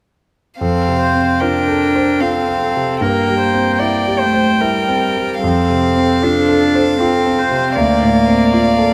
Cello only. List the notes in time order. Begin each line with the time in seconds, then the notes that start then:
0.60 C4
1.40 D4
2.20 C4
3.01 A#3
4.20 A3
4.60 G3
5.43 C4
6.23 D4
6.99 C4
7.75 A#3